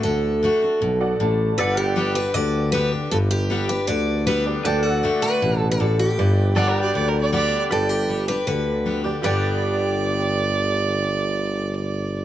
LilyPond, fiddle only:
\new Staff \with { instrumentName = "Fiddle" } { \time 4/4 \key g \major \tempo 4 = 157 r1 | r1 | r1 | r1 |
r4 \tuplet 3/2 { d''8 bes'8 d''8 d''8 bes'8 d''8 } d''8. r16 | r1 | d''1~ | d''1 | }